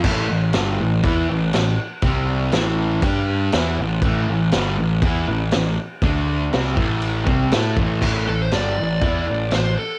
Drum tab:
CC |x-x-x-x-|x-x-x-x-|x-x-x-x-|x-x-x-x-|
SD |--o---o-|--o---o-|--o---o-|--o---o-|
BD |o---o---|o---o---|o---o---|o--o-o-o|

CC |x-x-x-x-|
SD |--o---o-|
BD |o---o---|